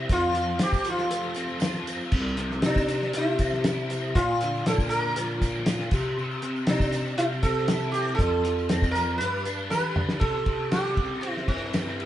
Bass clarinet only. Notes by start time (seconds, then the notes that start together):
0.10 F2
0.60 F3
1.11 F3
2.12 C2
2.64 C3
3.15 C3
4.16 A#2
4.66 A#2
5.16 A#2
5.92 C3
6.68 C3
7.17 C3
8.19 F2
8.70 F2
9.20 G2
9.71 E3
9.97 D3
10.21 C3
10.46 C3
11.48 G2
11.74 G2